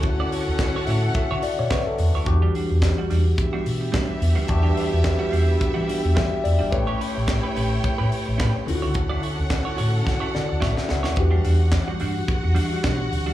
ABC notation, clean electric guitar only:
X:1
M:4/4
L:1/16
Q:"Swing 16ths" 1/4=108
K:Edor
V:1 name="Clean electric guitar"
z [EFd] [EFc] z2 [EFc] [EFc] z2 [EFc] z2 [EFc] z2 [EFc] | z [G,DG] [G,DF] z2 [G,DF] [G,DF] z2 [G,DF] z2 [G,DF] z2 [G,DF] | z [G,DG] [G,DF] z2 [G,DF] [G,DF] z2 [G,DF] [G,DF] z [G,DF] z2 [G,DF] | z [CGc] [CGB] z2 [CGB] [CGB] z2 [CGB] z2 [CGB] z2 [EFc] |
z [EFd] [EFc] z2 [EFc] [EFc] z2 [EFc] z2 [EFc] z2 [EFc] | z [G,DG] [G,DF] z2 [G,DF] [G,DF] z3 [G,DF] [G,DF] [G,DF] z2 [G,DF] |]